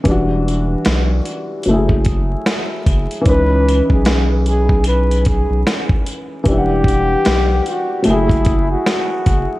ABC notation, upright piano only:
X:1
M:4/4
L:1/8
Q:"Swing 16ths" 1/4=75
K:Elyd
V:1 name="Upright piano"
[E,=G,=DF]4 [F,=A,E^G]4 | [E,CDB]8 | [E,=G,=DEf]4 [F,=A,E^G]4 |]